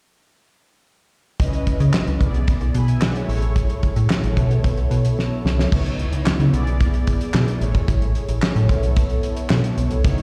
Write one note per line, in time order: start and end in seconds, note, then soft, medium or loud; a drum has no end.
1.39 1.62 C#2 loud
1.39 2.21 C#4 medium
1.39 2.19 E4 medium
1.39 2.21 B4 medium
1.39 2.21 D#5 medium
1.39 kick loud
1.39 closed hi-hat medium
1.53 closed hi-hat soft
1.67 kick medium
1.67 closed hi-hat medium
1.80 1.91 C#3 loud
1.80 closed hi-hat medium
1.93 snare loud
1.93 clap medium
2.07 2.18 C#2 medium
2.07 closed hi-hat soft
2.20 2.43 B1 loud
2.20 3.26 B3 medium
2.20 3.27 E4 medium
2.20 3.27 G#4 medium
2.20 2.74 D5 medium
2.20 kick medium
2.20 closed hi-hat medium
2.34 closed hi-hat medium
2.48 kick loud
2.48 closed hi-hat medium
2.61 2.72 B1 medium
2.61 closed hi-hat soft
2.75 2.97 B2 loud
2.75 2.87 G#5 medium
2.75 2.88 B5 medium
2.75 closed hi-hat medium
2.88 3.01 E5 medium
2.88 3.01 G#5 medium
2.88 closed hi-hat medium
3.01 3.15 D5 medium
3.01 3.15 F#5 medium
3.01 snare loud
3.01 clap medium
3.15 3.28 C#5 medium
3.15 3.41 E5 medium
3.15 closed hi-hat soft
3.28 3.73 A1 loud
3.28 4.34 A3 medium
3.28 4.35 E4 medium
3.28 4.35 G#4 medium
3.28 4.35 C#5 medium
3.28 open hi-hat medium
3.42 closed hi-hat medium
3.56 kick loud
3.56 closed hi-hat medium
3.70 closed hi-hat soft
3.83 kick medium
3.83 closed hi-hat medium
3.96 4.07 A2 medium
3.96 closed hi-hat medium
4.10 snare loud
4.10 clap medium
4.23 4.34 A1 loud
4.23 closed hi-hat soft
4.36 4.59 B2 loud
4.36 5.69 B3 medium
4.36 5.69 E4 medium
4.36 5.69 A4 medium
4.36 5.70 C#5 medium
4.36 kick medium
4.36 closed hi-hat medium
4.51 closed hi-hat soft
4.64 kick loud
4.64 closed hi-hat medium
4.77 4.88 B1 medium
4.77 closed hi-hat soft
4.91 5.13 B2 medium
4.91 closed hi-hat medium
5.05 closed hi-hat medium
5.19 snare medium
5.45 5.67 C2 medium
5.45 snare medium
5.59 snare medium
5.71 6.05 C#2 loud
5.71 6.51 B3 medium
5.71 6.53 D#4 medium
5.71 6.52 E4 medium
5.71 6.53 C#5 medium
5.71 kick loud
5.71 crash medium
5.86 closed hi-hat soft
5.99 closed hi-hat medium
6.13 6.24 C#2 medium
6.13 closed hi-hat medium
6.26 6.32 C#3 soft
6.26 snare loud
6.26 clap medium
6.40 6.51 C#3 loud
6.40 closed hi-hat soft
6.52 6.97 B1 loud
6.52 7.59 B3 medium
6.52 7.59 E4 medium
6.52 7.59 G#4 medium
6.52 7.60 D5 medium
6.52 closed hi-hat medium
6.67 closed hi-hat soft
6.80 kick loud
6.80 closed hi-hat loud
6.94 closed hi-hat soft
7.07 kick medium
7.07 closed hi-hat medium
7.21 closed hi-hat medium
7.34 7.45 B2 loud
7.34 snare loud
7.34 clap medium
7.48 closed hi-hat medium
7.61 7.72 A1 loud
7.61 8.67 A3 medium
7.61 8.67 E4 medium
7.61 8.68 G#4 medium
7.61 8.68 C#5 medium
7.61 closed hi-hat medium
7.75 7.86 G#1 loud
7.75 kick medium
7.75 closed hi-hat medium
7.88 8.21 A1 loud
7.88 kick loud
7.88 closed hi-hat loud
8.02 closed hi-hat soft
8.15 closed hi-hat medium
8.29 8.40 A1 medium
8.29 closed hi-hat medium
8.42 8.48 A2 soft
8.42 snare loud
8.42 clap medium
8.56 8.67 A2 loud
8.56 closed hi-hat soft
8.68 9.13 B1 loud
8.68 10.01 B3 medium
8.68 10.02 E4 medium
8.68 10.02 A4 medium
8.68 10.02 C#5 medium
8.68 kick medium
8.68 closed hi-hat medium
8.83 closed hi-hat medium
8.96 kick loud
8.96 closed hi-hat medium
9.10 closed hi-hat soft
9.23 closed hi-hat medium
9.37 closed hi-hat medium
9.50 9.62 B2 loud
9.50 snare loud
9.50 clap medium
9.64 closed hi-hat medium
9.78 9.89 B1 loud
9.78 closed hi-hat medium
9.91 10.02 C2 medium
9.91 closed hi-hat soft
10.04 10.22 C#2 loud
10.04 10.22 B3 medium
10.04 10.22 D#4 medium
10.04 10.22 E4 medium
10.04 10.22 C#5 medium
10.04 kick loud
10.04 closed hi-hat loud
10.18 closed hi-hat medium